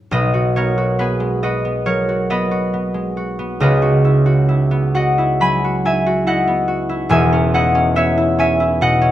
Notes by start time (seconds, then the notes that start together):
0.11 B1 B2 B4 D#5
0.34 F#4
0.56 B3 A#4 C#5
0.78 F#4
0.99 B3 G#4 B4
1.20 G#3
1.43 F#4 B4 D#5
1.65 B3
1.86 F#3 A#4 C#5
2.09 F#4
2.30 B3 B4 D#5
2.51 F#4
2.74 B3
2.94 G#3
3.17 F#4
3.39 B3
3.60 C#2 C#3 B4 D#5
3.82 F#4
4.05 E4
4.26 F#4
4.49 E4
4.71 B3
4.95 F#4 D#5 F#5
5.18 E4
5.40 F#3 G#5 B5
5.64 F#4
5.85 E4 E5 G#5
6.06 F#4
6.27 E4 D#5 F#5
6.47 B3
6.68 F#4
6.89 E4
7.09 E1 E2 E5 G#5
7.32 C#4
7.54 E4 D#5 F#5
7.75 C#4
7.96 B3 C#5 E5
8.18 E4
8.39 C#4 E5 G#5
8.60 E4
8.81 B2 D#5 F#5
9.02 C#4